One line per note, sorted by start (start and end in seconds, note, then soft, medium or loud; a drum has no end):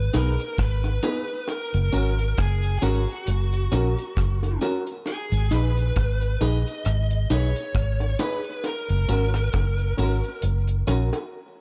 0.00 0.15 B4 medium
0.13 0.36 B1 medium
0.13 0.30 B3 medium
0.13 0.34 D#4 medium
0.13 0.30 D#4 medium
0.13 0.35 G#4 medium
0.13 0.30 G#4 medium
0.13 0.60 A#4 medium
0.13 0.35 B4 medium
0.13 closed hi-hat medium
0.13 high bongo medium
0.40 closed hi-hat soft
0.58 0.98 G#1 medium
0.58 1.49 B4 medium
0.58 kick loud
0.58 cross-stick loud
0.58 closed hi-hat medium
0.84 closed hi-hat soft
0.84 high bongo medium
1.03 1.19 B3 medium
1.03 1.24 D#4 medium
1.03 1.20 D#4 medium
1.03 1.24 G#4 medium
1.03 1.20 G#4 loud
1.03 1.25 B4 medium
1.03 closed hi-hat medium
1.03 high bongo medium
1.03 low bongo medium
1.28 closed hi-hat soft
1.48 2.41 A#4 medium
1.48 closed hi-hat medium
1.48 high bongo medium
1.74 1.91 F#1 medium
1.74 closed hi-hat medium
1.93 2.32 G#1 medium
1.93 2.09 C#4 medium
1.93 2.14 C#4 medium
1.93 2.09 F#4 medium
1.93 2.14 F#4 medium
1.93 2.09 A#4 loud
1.93 2.14 A#4 medium
1.93 closed hi-hat medium
2.19 closed hi-hat medium
2.37 2.77 F#1 medium
2.37 2.78 G#4 medium
2.37 kick medium
2.37 cross-stick loud
2.37 closed hi-hat medium
2.63 closed hi-hat soft
2.79 3.05 G#1 medium
2.79 2.98 C#4 medium
2.79 3.03 C#4 medium
2.79 2.99 F#4 medium
2.79 3.03 F#4 medium
2.79 2.83 G#4 medium
2.79 high bongo medium
2.83 4.58 F#4 medium
2.83 2.99 A#4 loud
2.83 3.04 A#4 loud
2.83 open hi-hat soft
3.09 closed hi-hat soft
3.27 3.66 F#1 loud
3.27 closed hi-hat loud
3.53 closed hi-hat soft
3.72 3.94 A#1 medium
3.72 3.88 C#4 medium
3.72 3.93 C#4 medium
3.72 3.88 F#4 medium
3.72 3.93 F#4 medium
3.72 3.89 A#4 medium
3.72 3.94 A#4 medium
3.72 closed hi-hat medium
3.72 high bongo medium
3.98 closed hi-hat medium
4.17 4.56 F#1 medium
4.17 kick loud
4.17 cross-stick loud
4.17 closed hi-hat medium
4.43 closed hi-hat soft
4.43 high bongo medium
4.61 4.78 C#4 medium
4.61 4.82 C#4 medium
4.61 4.78 F#4 medium
4.61 4.83 F#4 medium
4.61 4.78 A#4 medium
4.61 4.83 A#4 medium
4.61 closed hi-hat medium
4.61 high bongo medium
4.61 low bongo medium
4.87 4.95 F#4 soft
4.87 4.95 A#4 soft
4.87 closed hi-hat soft
5.06 5.54 G#4 medium
5.06 closed hi-hat medium
5.06 high bongo medium
5.32 5.49 G#1 medium
5.32 closed hi-hat medium
5.51 5.90 A#1 medium
5.51 5.72 D#4 medium
5.51 5.67 D#4 medium
5.51 5.68 G#4 medium
5.51 5.72 G#4 medium
5.51 5.68 B4 loud
5.51 5.73 B4 medium
5.51 6.44 B4 medium
5.51 closed hi-hat medium
5.77 closed hi-hat soft
5.96 6.35 G#1 medium
5.96 kick loud
5.96 cross-stick loud
5.96 closed hi-hat medium
6.21 closed hi-hat soft
6.41 6.63 A#1 medium
6.41 6.57 D#4 medium
6.41 6.61 D#4 medium
6.41 6.57 G#4 medium
6.41 6.62 G#4 medium
6.41 6.57 B4 loud
6.41 6.62 B4 medium
6.41 7.34 D#5 loud
6.41 closed hi-hat medium
6.41 high bongo medium
6.68 closed hi-hat soft
6.85 7.25 G#1 loud
6.85 cross-stick medium
6.85 closed hi-hat loud
7.11 closed hi-hat soft
7.30 7.52 B1 medium
7.30 7.46 D#4 medium
7.30 7.51 D#4 medium
7.30 7.47 G#4 medium
7.30 7.51 G#4 medium
7.30 7.47 B4 medium
7.30 7.52 B4 medium
7.30 8.21 C#5 medium
7.30 closed hi-hat medium
7.30 high bongo medium
7.56 closed hi-hat medium
7.75 8.14 G#1 medium
7.75 kick loud
7.75 cross-stick loud
7.75 closed hi-hat medium
8.00 closed hi-hat soft
8.00 high bongo soft
8.19 8.36 D#4 medium
8.19 8.40 D#4 medium
8.19 8.36 G#4 medium
8.19 8.41 G#4 medium
8.19 8.36 B4 loud
8.19 8.41 B4 loud
8.19 8.62 B4 loud
8.19 closed hi-hat medium
8.19 high bongo medium
8.19 low bongo medium
8.44 closed hi-hat soft
8.64 10.40 A#4 medium
8.64 closed hi-hat medium
8.64 high bongo medium
8.89 9.07 F#1 medium
8.89 closed hi-hat medium
9.08 9.48 G#1 medium
9.08 9.25 C#4 medium
9.08 9.30 C#4 medium
9.08 9.25 F#4 medium
9.08 9.30 F#4 medium
9.08 9.25 A#4 medium
9.08 9.30 A#4 medium
9.08 closed hi-hat medium
9.34 cross-stick medium
9.34 closed hi-hat soft
9.53 9.93 F#1 medium
9.53 kick loud
9.53 cross-stick loud
9.53 closed hi-hat medium
9.53 high bongo medium
9.78 closed hi-hat soft
9.98 10.20 G#1 medium
9.98 10.14 C#4 medium
9.98 10.19 C#4 medium
9.98 10.14 F#4 medium
9.98 10.19 F#4 medium
9.98 10.15 A#4 medium
9.98 10.20 A#4 medium
9.98 open hi-hat soft
9.98 high bongo medium
10.24 closed hi-hat soft
10.42 10.82 F#1 medium
10.42 closed hi-hat loud
10.68 closed hi-hat soft
10.87 11.10 A#1 medium
10.87 11.04 C#4 medium
10.87 11.08 C#4 medium
10.87 11.04 F#4 medium
10.87 11.09 F#4 medium
10.87 11.04 A#4 medium
10.87 11.09 A#4 medium
10.87 closed hi-hat medium
10.87 high bongo medium
11.13 closed hi-hat medium
11.13 high bongo medium